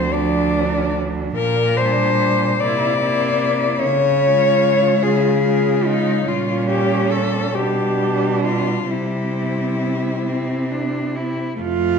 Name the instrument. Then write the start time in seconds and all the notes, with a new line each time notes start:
cello
Already playing: D2 F3 C4 C5
0.13 F3 D4 D5
1.36 A#2 A#4
1.77 G3 D4 C5
2.60 C3 A#3 E4 D5
3.03 A#3 E4
3.82 C#3 C#5
4.24 G#3 F4
5.03 C#3 G#4
5.46 G#3 F4
5.86 D#4
6.27 A#2 G3 C#4 F4
6.70 G4
7.12 A4
7.55 B2 G3 D4 G4
8.44 F4
8.90 C3 G3 C4 E4
10.26 C4
10.71 D4
11.16 E4
11.60 F2 A3 F4